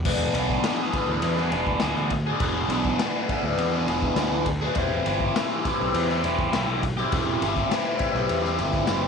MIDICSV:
0, 0, Header, 1, 5, 480
1, 0, Start_track
1, 0, Tempo, 588813
1, 42, Time_signature, 4, 2, 24, 8
1, 7400, End_track
2, 0, Start_track
2, 0, Title_t, "Overdriven electric guitar"
2, 0, Program_c, 0, 29
2, 45, Note_on_c, 0, 52, 92
2, 49, Note_on_c, 0, 59, 99
2, 64, Note_on_c, 0, 62, 101
2, 75, Note_on_c, 0, 68, 102
2, 280, Note_off_c, 0, 52, 0
2, 283, Note_on_c, 0, 52, 79
2, 290, Note_off_c, 0, 59, 0
2, 294, Note_on_c, 0, 59, 80
2, 298, Note_off_c, 0, 62, 0
2, 301, Note_on_c, 0, 62, 93
2, 308, Note_off_c, 0, 68, 0
2, 318, Note_on_c, 0, 68, 86
2, 515, Note_off_c, 0, 52, 0
2, 518, Note_on_c, 0, 52, 94
2, 525, Note_off_c, 0, 59, 0
2, 528, Note_on_c, 0, 59, 97
2, 535, Note_off_c, 0, 62, 0
2, 536, Note_off_c, 0, 68, 0
2, 538, Note_on_c, 0, 62, 113
2, 546, Note_on_c, 0, 68, 104
2, 637, Note_off_c, 0, 68, 0
2, 647, Note_on_c, 0, 68, 72
2, 663, Note_off_c, 0, 62, 0
2, 666, Note_on_c, 0, 62, 62
2, 671, Note_off_c, 0, 59, 0
2, 675, Note_on_c, 0, 59, 62
2, 759, Note_off_c, 0, 52, 0
2, 762, Note_on_c, 0, 52, 94
2, 774, Note_off_c, 0, 59, 0
2, 777, Note_off_c, 0, 62, 0
2, 777, Note_on_c, 0, 59, 95
2, 781, Note_off_c, 0, 68, 0
2, 781, Note_on_c, 0, 62, 87
2, 791, Note_on_c, 0, 68, 89
2, 876, Note_off_c, 0, 68, 0
2, 886, Note_on_c, 0, 68, 68
2, 892, Note_off_c, 0, 62, 0
2, 902, Note_on_c, 0, 62, 70
2, 911, Note_off_c, 0, 59, 0
2, 914, Note_on_c, 0, 59, 65
2, 1096, Note_off_c, 0, 68, 0
2, 1106, Note_on_c, 0, 68, 78
2, 1111, Note_off_c, 0, 62, 0
2, 1120, Note_on_c, 0, 62, 77
2, 1130, Note_off_c, 0, 59, 0
2, 1133, Note_on_c, 0, 59, 71
2, 1145, Note_off_c, 0, 52, 0
2, 1232, Note_on_c, 0, 52, 76
2, 1240, Note_off_c, 0, 59, 0
2, 1244, Note_off_c, 0, 62, 0
2, 1244, Note_on_c, 0, 59, 75
2, 1252, Note_off_c, 0, 68, 0
2, 1254, Note_on_c, 0, 62, 86
2, 1262, Note_on_c, 0, 68, 84
2, 1472, Note_off_c, 0, 52, 0
2, 1475, Note_on_c, 0, 52, 99
2, 1477, Note_off_c, 0, 59, 0
2, 1479, Note_off_c, 0, 62, 0
2, 1481, Note_on_c, 0, 59, 104
2, 1489, Note_on_c, 0, 62, 117
2, 1496, Note_off_c, 0, 68, 0
2, 1506, Note_on_c, 0, 68, 112
2, 1599, Note_off_c, 0, 68, 0
2, 1609, Note_on_c, 0, 68, 70
2, 1615, Note_off_c, 0, 62, 0
2, 1625, Note_on_c, 0, 62, 69
2, 1631, Note_off_c, 0, 59, 0
2, 1635, Note_on_c, 0, 59, 64
2, 1721, Note_off_c, 0, 68, 0
2, 1724, Note_off_c, 0, 62, 0
2, 1729, Note_off_c, 0, 59, 0
2, 1731, Note_off_c, 0, 52, 0
2, 1848, Note_on_c, 0, 68, 74
2, 1868, Note_on_c, 0, 62, 61
2, 1878, Note_on_c, 0, 59, 57
2, 1963, Note_on_c, 0, 52, 92
2, 1965, Note_off_c, 0, 62, 0
2, 1967, Note_off_c, 0, 59, 0
2, 1971, Note_on_c, 0, 59, 86
2, 1975, Note_on_c, 0, 62, 113
2, 1981, Note_off_c, 0, 68, 0
2, 1990, Note_on_c, 0, 68, 104
2, 2199, Note_off_c, 0, 52, 0
2, 2202, Note_on_c, 0, 52, 76
2, 2209, Note_off_c, 0, 59, 0
2, 2212, Note_on_c, 0, 59, 87
2, 2215, Note_off_c, 0, 68, 0
2, 2217, Note_off_c, 0, 62, 0
2, 2225, Note_on_c, 0, 68, 90
2, 2227, Note_on_c, 0, 62, 91
2, 2446, Note_off_c, 0, 52, 0
2, 2449, Note_on_c, 0, 52, 96
2, 2456, Note_off_c, 0, 59, 0
2, 2459, Note_on_c, 0, 59, 100
2, 2463, Note_off_c, 0, 62, 0
2, 2468, Note_off_c, 0, 68, 0
2, 2473, Note_on_c, 0, 62, 97
2, 2478, Note_on_c, 0, 68, 101
2, 2551, Note_off_c, 0, 68, 0
2, 2561, Note_on_c, 0, 68, 83
2, 2563, Note_off_c, 0, 62, 0
2, 2573, Note_on_c, 0, 62, 70
2, 2586, Note_off_c, 0, 59, 0
2, 2589, Note_on_c, 0, 59, 60
2, 2681, Note_off_c, 0, 52, 0
2, 2685, Note_on_c, 0, 52, 95
2, 2693, Note_off_c, 0, 59, 0
2, 2697, Note_off_c, 0, 62, 0
2, 2697, Note_on_c, 0, 59, 87
2, 2703, Note_off_c, 0, 68, 0
2, 2706, Note_on_c, 0, 62, 98
2, 2712, Note_on_c, 0, 68, 92
2, 2788, Note_off_c, 0, 68, 0
2, 2798, Note_on_c, 0, 68, 76
2, 2808, Note_off_c, 0, 62, 0
2, 2818, Note_on_c, 0, 62, 83
2, 2824, Note_off_c, 0, 59, 0
2, 2827, Note_on_c, 0, 59, 60
2, 3032, Note_off_c, 0, 68, 0
2, 3042, Note_on_c, 0, 68, 85
2, 3051, Note_off_c, 0, 62, 0
2, 3060, Note_on_c, 0, 62, 73
2, 3070, Note_off_c, 0, 59, 0
2, 3073, Note_on_c, 0, 59, 61
2, 3085, Note_off_c, 0, 52, 0
2, 3154, Note_on_c, 0, 52, 87
2, 3160, Note_off_c, 0, 59, 0
2, 3163, Note_on_c, 0, 59, 85
2, 3169, Note_off_c, 0, 62, 0
2, 3173, Note_off_c, 0, 68, 0
2, 3179, Note_on_c, 0, 62, 82
2, 3182, Note_on_c, 0, 68, 79
2, 3400, Note_off_c, 0, 52, 0
2, 3404, Note_on_c, 0, 52, 116
2, 3407, Note_off_c, 0, 62, 0
2, 3413, Note_off_c, 0, 59, 0
2, 3416, Note_on_c, 0, 59, 102
2, 3417, Note_on_c, 0, 62, 105
2, 3419, Note_off_c, 0, 68, 0
2, 3429, Note_on_c, 0, 68, 119
2, 3515, Note_off_c, 0, 68, 0
2, 3525, Note_on_c, 0, 68, 72
2, 3535, Note_off_c, 0, 62, 0
2, 3545, Note_on_c, 0, 62, 70
2, 3555, Note_off_c, 0, 59, 0
2, 3558, Note_on_c, 0, 59, 62
2, 3650, Note_off_c, 0, 52, 0
2, 3650, Note_off_c, 0, 62, 0
2, 3654, Note_off_c, 0, 68, 0
2, 3656, Note_off_c, 0, 59, 0
2, 3767, Note_on_c, 0, 68, 72
2, 3777, Note_on_c, 0, 62, 67
2, 3793, Note_on_c, 0, 59, 66
2, 3872, Note_off_c, 0, 68, 0
2, 3877, Note_off_c, 0, 62, 0
2, 3877, Note_on_c, 0, 52, 89
2, 3882, Note_off_c, 0, 59, 0
2, 3885, Note_on_c, 0, 60, 96
2, 3897, Note_on_c, 0, 64, 101
2, 3907, Note_on_c, 0, 67, 102
2, 4113, Note_off_c, 0, 52, 0
2, 4116, Note_on_c, 0, 52, 78
2, 4127, Note_off_c, 0, 60, 0
2, 4130, Note_on_c, 0, 60, 89
2, 4134, Note_off_c, 0, 64, 0
2, 4138, Note_on_c, 0, 64, 99
2, 4148, Note_off_c, 0, 67, 0
2, 4151, Note_on_c, 0, 67, 85
2, 4356, Note_off_c, 0, 52, 0
2, 4359, Note_on_c, 0, 52, 96
2, 4363, Note_off_c, 0, 60, 0
2, 4366, Note_on_c, 0, 60, 108
2, 4373, Note_off_c, 0, 64, 0
2, 4377, Note_on_c, 0, 64, 108
2, 4381, Note_off_c, 0, 67, 0
2, 4384, Note_on_c, 0, 67, 107
2, 4475, Note_off_c, 0, 67, 0
2, 4478, Note_on_c, 0, 67, 85
2, 4490, Note_off_c, 0, 64, 0
2, 4493, Note_on_c, 0, 64, 67
2, 4499, Note_off_c, 0, 60, 0
2, 4503, Note_on_c, 0, 60, 60
2, 4603, Note_off_c, 0, 52, 0
2, 4606, Note_on_c, 0, 52, 100
2, 4615, Note_off_c, 0, 60, 0
2, 4618, Note_on_c, 0, 60, 85
2, 4622, Note_off_c, 0, 64, 0
2, 4625, Note_on_c, 0, 64, 103
2, 4627, Note_off_c, 0, 67, 0
2, 4630, Note_on_c, 0, 67, 93
2, 4720, Note_off_c, 0, 67, 0
2, 4730, Note_on_c, 0, 67, 88
2, 4738, Note_off_c, 0, 64, 0
2, 4741, Note_on_c, 0, 64, 66
2, 4742, Note_off_c, 0, 60, 0
2, 4752, Note_on_c, 0, 60, 67
2, 4950, Note_off_c, 0, 67, 0
2, 4960, Note_on_c, 0, 67, 88
2, 4974, Note_off_c, 0, 64, 0
2, 4975, Note_off_c, 0, 60, 0
2, 4978, Note_on_c, 0, 64, 73
2, 4985, Note_on_c, 0, 60, 62
2, 5069, Note_off_c, 0, 52, 0
2, 5073, Note_on_c, 0, 52, 85
2, 5080, Note_off_c, 0, 60, 0
2, 5090, Note_on_c, 0, 60, 85
2, 5098, Note_off_c, 0, 64, 0
2, 5098, Note_off_c, 0, 67, 0
2, 5101, Note_on_c, 0, 64, 79
2, 5108, Note_on_c, 0, 67, 92
2, 5310, Note_off_c, 0, 52, 0
2, 5312, Note_off_c, 0, 60, 0
2, 5313, Note_on_c, 0, 52, 106
2, 5322, Note_on_c, 0, 60, 105
2, 5330, Note_off_c, 0, 67, 0
2, 5332, Note_off_c, 0, 64, 0
2, 5335, Note_on_c, 0, 64, 103
2, 5340, Note_on_c, 0, 67, 118
2, 5432, Note_off_c, 0, 67, 0
2, 5442, Note_on_c, 0, 67, 67
2, 5452, Note_off_c, 0, 64, 0
2, 5455, Note_on_c, 0, 64, 75
2, 5456, Note_off_c, 0, 60, 0
2, 5466, Note_on_c, 0, 60, 59
2, 5563, Note_off_c, 0, 60, 0
2, 5568, Note_off_c, 0, 52, 0
2, 5568, Note_off_c, 0, 67, 0
2, 5571, Note_off_c, 0, 64, 0
2, 5685, Note_on_c, 0, 67, 83
2, 5702, Note_on_c, 0, 64, 61
2, 5710, Note_on_c, 0, 60, 56
2, 5800, Note_off_c, 0, 60, 0
2, 5800, Note_on_c, 0, 52, 90
2, 5810, Note_on_c, 0, 60, 97
2, 5813, Note_off_c, 0, 64, 0
2, 5817, Note_on_c, 0, 64, 101
2, 5825, Note_off_c, 0, 67, 0
2, 5835, Note_on_c, 0, 67, 95
2, 6044, Note_off_c, 0, 52, 0
2, 6047, Note_on_c, 0, 52, 85
2, 6052, Note_off_c, 0, 60, 0
2, 6062, Note_on_c, 0, 60, 77
2, 6065, Note_off_c, 0, 64, 0
2, 6068, Note_off_c, 0, 67, 0
2, 6068, Note_on_c, 0, 64, 94
2, 6078, Note_on_c, 0, 67, 95
2, 6265, Note_off_c, 0, 60, 0
2, 6266, Note_off_c, 0, 52, 0
2, 6269, Note_on_c, 0, 52, 99
2, 6275, Note_on_c, 0, 60, 99
2, 6282, Note_off_c, 0, 64, 0
2, 6285, Note_on_c, 0, 64, 108
2, 6289, Note_off_c, 0, 67, 0
2, 6299, Note_on_c, 0, 67, 102
2, 6379, Note_off_c, 0, 67, 0
2, 6388, Note_on_c, 0, 67, 82
2, 6399, Note_off_c, 0, 64, 0
2, 6401, Note_off_c, 0, 60, 0
2, 6402, Note_on_c, 0, 64, 69
2, 6411, Note_on_c, 0, 60, 59
2, 6484, Note_off_c, 0, 52, 0
2, 6488, Note_on_c, 0, 52, 88
2, 6494, Note_off_c, 0, 60, 0
2, 6503, Note_on_c, 0, 60, 87
2, 6506, Note_off_c, 0, 64, 0
2, 6508, Note_off_c, 0, 67, 0
2, 6510, Note_on_c, 0, 64, 103
2, 6517, Note_on_c, 0, 67, 93
2, 6610, Note_off_c, 0, 67, 0
2, 6620, Note_on_c, 0, 67, 78
2, 6632, Note_off_c, 0, 64, 0
2, 6635, Note_on_c, 0, 64, 70
2, 6637, Note_off_c, 0, 60, 0
2, 6646, Note_on_c, 0, 60, 56
2, 6844, Note_off_c, 0, 67, 0
2, 6853, Note_on_c, 0, 67, 81
2, 6872, Note_off_c, 0, 64, 0
2, 6874, Note_off_c, 0, 60, 0
2, 6875, Note_on_c, 0, 64, 67
2, 6883, Note_on_c, 0, 60, 60
2, 6981, Note_off_c, 0, 60, 0
2, 6982, Note_off_c, 0, 52, 0
2, 6986, Note_on_c, 0, 52, 84
2, 6991, Note_on_c, 0, 60, 79
2, 6994, Note_off_c, 0, 67, 0
2, 6998, Note_off_c, 0, 64, 0
2, 7001, Note_on_c, 0, 64, 83
2, 7003, Note_on_c, 0, 67, 80
2, 7225, Note_off_c, 0, 52, 0
2, 7229, Note_on_c, 0, 52, 107
2, 7234, Note_off_c, 0, 60, 0
2, 7244, Note_off_c, 0, 64, 0
2, 7244, Note_on_c, 0, 60, 99
2, 7248, Note_on_c, 0, 64, 110
2, 7249, Note_off_c, 0, 67, 0
2, 7259, Note_on_c, 0, 67, 115
2, 7354, Note_off_c, 0, 67, 0
2, 7364, Note_on_c, 0, 67, 61
2, 7372, Note_off_c, 0, 64, 0
2, 7375, Note_on_c, 0, 64, 66
2, 7377, Note_off_c, 0, 60, 0
2, 7400, Note_off_c, 0, 52, 0
2, 7400, Note_off_c, 0, 64, 0
2, 7400, Note_off_c, 0, 67, 0
2, 7400, End_track
3, 0, Start_track
3, 0, Title_t, "Picked electric bass"
3, 0, Program_c, 1, 34
3, 42, Note_on_c, 1, 28, 101
3, 230, Note_off_c, 1, 28, 0
3, 273, Note_on_c, 1, 35, 109
3, 465, Note_off_c, 1, 35, 0
3, 881, Note_on_c, 1, 38, 84
3, 976, Note_off_c, 1, 38, 0
3, 1000, Note_on_c, 1, 40, 96
3, 1237, Note_on_c, 1, 28, 98
3, 1249, Note_off_c, 1, 40, 0
3, 1428, Note_off_c, 1, 28, 0
3, 1485, Note_on_c, 1, 38, 101
3, 1578, Note_off_c, 1, 38, 0
3, 1599, Note_on_c, 1, 38, 88
3, 1883, Note_off_c, 1, 38, 0
3, 1958, Note_on_c, 1, 28, 114
3, 2148, Note_off_c, 1, 28, 0
3, 2187, Note_on_c, 1, 35, 118
3, 2382, Note_off_c, 1, 35, 0
3, 2796, Note_on_c, 1, 38, 85
3, 2893, Note_off_c, 1, 38, 0
3, 2912, Note_on_c, 1, 40, 101
3, 3151, Note_on_c, 1, 28, 101
3, 3163, Note_off_c, 1, 40, 0
3, 3344, Note_off_c, 1, 28, 0
3, 3392, Note_on_c, 1, 38, 104
3, 3491, Note_off_c, 1, 38, 0
3, 3512, Note_on_c, 1, 38, 78
3, 3799, Note_off_c, 1, 38, 0
3, 3881, Note_on_c, 1, 28, 117
3, 4070, Note_off_c, 1, 28, 0
3, 4129, Note_on_c, 1, 31, 122
3, 4315, Note_off_c, 1, 31, 0
3, 4735, Note_on_c, 1, 35, 78
3, 4825, Note_off_c, 1, 35, 0
3, 4842, Note_on_c, 1, 40, 101
3, 5085, Note_on_c, 1, 28, 99
3, 5097, Note_off_c, 1, 40, 0
3, 5272, Note_off_c, 1, 28, 0
3, 5337, Note_on_c, 1, 35, 106
3, 5425, Note_off_c, 1, 35, 0
3, 5444, Note_on_c, 1, 35, 84
3, 5725, Note_off_c, 1, 35, 0
3, 5808, Note_on_c, 1, 28, 99
3, 5993, Note_off_c, 1, 28, 0
3, 6045, Note_on_c, 1, 31, 116
3, 6232, Note_off_c, 1, 31, 0
3, 6643, Note_on_c, 1, 35, 96
3, 6736, Note_off_c, 1, 35, 0
3, 6765, Note_on_c, 1, 40, 92
3, 7000, Note_off_c, 1, 40, 0
3, 7005, Note_on_c, 1, 31, 96
3, 7218, Note_off_c, 1, 31, 0
3, 7242, Note_on_c, 1, 30, 95
3, 7400, Note_off_c, 1, 30, 0
3, 7400, End_track
4, 0, Start_track
4, 0, Title_t, "Muted overdriven electric guitar strokes"
4, 1731, Note_on_c, 9, 29, 61
4, 1812, Note_off_c, 9, 29, 0
4, 3653, Note_on_c, 9, 29, 47
4, 3735, Note_off_c, 9, 29, 0
4, 5572, Note_on_c, 9, 29, 47
4, 5653, Note_off_c, 9, 29, 0
4, 7400, End_track
5, 0, Start_track
5, 0, Title_t, "Drums"
5, 40, Note_on_c, 9, 49, 123
5, 43, Note_on_c, 9, 36, 123
5, 122, Note_off_c, 9, 49, 0
5, 124, Note_off_c, 9, 36, 0
5, 282, Note_on_c, 9, 51, 99
5, 364, Note_off_c, 9, 51, 0
5, 400, Note_on_c, 9, 38, 36
5, 402, Note_on_c, 9, 36, 82
5, 481, Note_off_c, 9, 38, 0
5, 484, Note_off_c, 9, 36, 0
5, 520, Note_on_c, 9, 38, 127
5, 520, Note_on_c, 9, 51, 120
5, 601, Note_off_c, 9, 38, 0
5, 601, Note_off_c, 9, 51, 0
5, 760, Note_on_c, 9, 51, 84
5, 761, Note_on_c, 9, 36, 88
5, 842, Note_off_c, 9, 51, 0
5, 843, Note_off_c, 9, 36, 0
5, 994, Note_on_c, 9, 51, 109
5, 1076, Note_off_c, 9, 51, 0
5, 1116, Note_on_c, 9, 38, 39
5, 1197, Note_off_c, 9, 38, 0
5, 1237, Note_on_c, 9, 51, 81
5, 1319, Note_off_c, 9, 51, 0
5, 1359, Note_on_c, 9, 36, 89
5, 1440, Note_off_c, 9, 36, 0
5, 1465, Note_on_c, 9, 38, 105
5, 1465, Note_on_c, 9, 51, 97
5, 1547, Note_off_c, 9, 38, 0
5, 1547, Note_off_c, 9, 51, 0
5, 1595, Note_on_c, 9, 38, 32
5, 1677, Note_off_c, 9, 38, 0
5, 1714, Note_on_c, 9, 51, 76
5, 1719, Note_on_c, 9, 36, 79
5, 1796, Note_off_c, 9, 51, 0
5, 1800, Note_off_c, 9, 36, 0
5, 1956, Note_on_c, 9, 51, 114
5, 1959, Note_on_c, 9, 36, 114
5, 2038, Note_off_c, 9, 51, 0
5, 2040, Note_off_c, 9, 36, 0
5, 2199, Note_on_c, 9, 51, 88
5, 2281, Note_off_c, 9, 51, 0
5, 2321, Note_on_c, 9, 36, 89
5, 2402, Note_off_c, 9, 36, 0
5, 2440, Note_on_c, 9, 38, 120
5, 2440, Note_on_c, 9, 51, 100
5, 2522, Note_off_c, 9, 38, 0
5, 2522, Note_off_c, 9, 51, 0
5, 2683, Note_on_c, 9, 36, 94
5, 2684, Note_on_c, 9, 51, 80
5, 2765, Note_off_c, 9, 36, 0
5, 2765, Note_off_c, 9, 51, 0
5, 2921, Note_on_c, 9, 51, 111
5, 3003, Note_off_c, 9, 51, 0
5, 3162, Note_on_c, 9, 51, 80
5, 3244, Note_off_c, 9, 51, 0
5, 3279, Note_on_c, 9, 36, 86
5, 3360, Note_off_c, 9, 36, 0
5, 3394, Note_on_c, 9, 38, 109
5, 3394, Note_on_c, 9, 51, 91
5, 3475, Note_off_c, 9, 38, 0
5, 3475, Note_off_c, 9, 51, 0
5, 3634, Note_on_c, 9, 51, 79
5, 3638, Note_on_c, 9, 36, 86
5, 3716, Note_off_c, 9, 51, 0
5, 3720, Note_off_c, 9, 36, 0
5, 3872, Note_on_c, 9, 51, 102
5, 3879, Note_on_c, 9, 36, 119
5, 3953, Note_off_c, 9, 51, 0
5, 3960, Note_off_c, 9, 36, 0
5, 4124, Note_on_c, 9, 51, 87
5, 4205, Note_off_c, 9, 51, 0
5, 4243, Note_on_c, 9, 36, 92
5, 4324, Note_off_c, 9, 36, 0
5, 4369, Note_on_c, 9, 38, 127
5, 4369, Note_on_c, 9, 51, 110
5, 4451, Note_off_c, 9, 38, 0
5, 4451, Note_off_c, 9, 51, 0
5, 4606, Note_on_c, 9, 38, 37
5, 4606, Note_on_c, 9, 51, 89
5, 4607, Note_on_c, 9, 36, 95
5, 4688, Note_off_c, 9, 36, 0
5, 4688, Note_off_c, 9, 38, 0
5, 4688, Note_off_c, 9, 51, 0
5, 4845, Note_on_c, 9, 51, 126
5, 4926, Note_off_c, 9, 51, 0
5, 4968, Note_on_c, 9, 38, 39
5, 5050, Note_off_c, 9, 38, 0
5, 5086, Note_on_c, 9, 51, 87
5, 5167, Note_off_c, 9, 51, 0
5, 5205, Note_on_c, 9, 36, 95
5, 5287, Note_off_c, 9, 36, 0
5, 5324, Note_on_c, 9, 38, 111
5, 5324, Note_on_c, 9, 51, 106
5, 5406, Note_off_c, 9, 38, 0
5, 5406, Note_off_c, 9, 51, 0
5, 5568, Note_on_c, 9, 36, 90
5, 5568, Note_on_c, 9, 51, 84
5, 5650, Note_off_c, 9, 36, 0
5, 5650, Note_off_c, 9, 51, 0
5, 5686, Note_on_c, 9, 38, 40
5, 5768, Note_off_c, 9, 38, 0
5, 5805, Note_on_c, 9, 51, 116
5, 5809, Note_on_c, 9, 36, 126
5, 5886, Note_off_c, 9, 51, 0
5, 5891, Note_off_c, 9, 36, 0
5, 6049, Note_on_c, 9, 51, 92
5, 6130, Note_off_c, 9, 51, 0
5, 6162, Note_on_c, 9, 38, 38
5, 6166, Note_on_c, 9, 36, 81
5, 6244, Note_off_c, 9, 38, 0
5, 6248, Note_off_c, 9, 36, 0
5, 6289, Note_on_c, 9, 38, 110
5, 6289, Note_on_c, 9, 51, 106
5, 6371, Note_off_c, 9, 38, 0
5, 6371, Note_off_c, 9, 51, 0
5, 6515, Note_on_c, 9, 51, 75
5, 6523, Note_on_c, 9, 36, 103
5, 6596, Note_off_c, 9, 51, 0
5, 6604, Note_off_c, 9, 36, 0
5, 6759, Note_on_c, 9, 51, 103
5, 6841, Note_off_c, 9, 51, 0
5, 6883, Note_on_c, 9, 38, 39
5, 6965, Note_off_c, 9, 38, 0
5, 6999, Note_on_c, 9, 51, 75
5, 7080, Note_off_c, 9, 51, 0
5, 7114, Note_on_c, 9, 38, 36
5, 7119, Note_on_c, 9, 36, 94
5, 7196, Note_off_c, 9, 38, 0
5, 7201, Note_off_c, 9, 36, 0
5, 7234, Note_on_c, 9, 38, 111
5, 7234, Note_on_c, 9, 51, 98
5, 7316, Note_off_c, 9, 38, 0
5, 7316, Note_off_c, 9, 51, 0
5, 7400, End_track
0, 0, End_of_file